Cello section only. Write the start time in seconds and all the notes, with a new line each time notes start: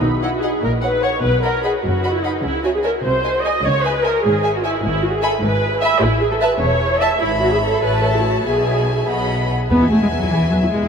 0.01 B2
0.63 A#2
1.23 B2
1.83 F#2
2.44 C#3
3.04 C3
3.65 C#3
4.24 G#2
4.83 G#2
5.42 G#2
6.01 A2
6.62 E2
7.22 G#2
7.83 A2
8.46 B2
9.08 B2
9.70 B3
9.91 A3
10.01 G#3
10.11 F#3
10.31 E3
10.51 F#3
10.71 G#3